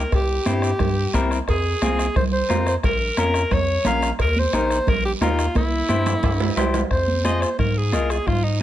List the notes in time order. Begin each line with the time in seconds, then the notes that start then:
Already playing: A#4
0.12 C2 G4, bombo low, bombo rim, cowbell, long guiro
0.46 G2 C4 E4 G4, bombo rim, cowbell, high conga, short guiro
0.62 bombo rim, short guiro
0.79 G2, bombo low, bombo rim, cowbell, low conga, long guiro
1.14 C2 C4 E4 A#4, bombo low, bombo rim, cowbell, high conga, short guiro
1.31 bombo rim, short guiro
1.48 F2 G#4, bombo low, bombo rim, cowbell, long guiro
1.82 C2 C4 F4 G#4, bombo rim, cowbell, high conga, short guiro
1.99 bombo rim, short guiro
2.16 C2 C5, bombo low, bombo rim, cowbell, low conga, long guiro
2.33 C5
2.49 F2 C4 F4 A#4, bombo rim, cowbell, high conga, low timbale, short guiro
2.67 C5, bombo rim, short guiro
2.83 A#1 A#4, bombo low, bombo rim, cowbell, low conga, long guiro
3.17 F2 C#4 F4 A#4, bombo rim, cowbell, high conga, short guiro
3.34 bombo rim, short guiro
3.51 F2 C#5, bombo low, bombo rim, cowbell, low conga, long guiro
3.85 A#1 C#4 F4 A#4 F5, bombo rim, cowbell, high conga, low conga, short guiro
4.02 bombo rim, short guiro
4.19 D#2 A#4, bombo low, bombo rim, cowbell, long guiro
4.36 C5, high conga
4.53 A#1 D#4 G4 A#4 C5, bombo rim, cowbell, high conga, short guiro
4.70 bombo rim, short guiro
4.87 A#1 A#4, bombo low, bombo rim, cowbell, low conga, long guiro
5.05 G4
5.21 D#2 D#4 F4 G4 A#4, bombo rim, cowbell, high conga, low timbale, short guiro
5.39 bombo rim, short guiro
5.55 C2 E4, bombo low, bombo rim, cowbell, high conga, long guiro
5.89 G2 E4 G4 C5, bombo rim, cowbell, high conga, short guiro
6.06 bombo rim, low conga, high timbale, short guiro
6.23 G2, bombo low, bombo rim, cowbell, low conga, high timbale, long guiro
6.40 low timbale
6.57 C2 E4 G4 C5, bombo rim, cowbell, low conga, low timbale, short guiro
6.74 bombo rim, low conga, low timbale, short guiro
6.91 F2 C5, bombo low, bombo rim, long guiro
7.08 high conga
7.24 F4 G#4 C5 D#5, bombo rim, high conga, short guiro
7.41 C5, bombo rim, short guiro
7.59 G#2 A#4, bombo low, bombo rim, low conga, long guiro
7.78 G#4
7.92 C2 F4 G#4 A#4 D#5, bombo rim, high conga, short guiro
8.10 G#4, bombo rim, short guiro
8.27 G#2 F4, bombo low, bombo rim, low conga, long guiro
8.44 D#4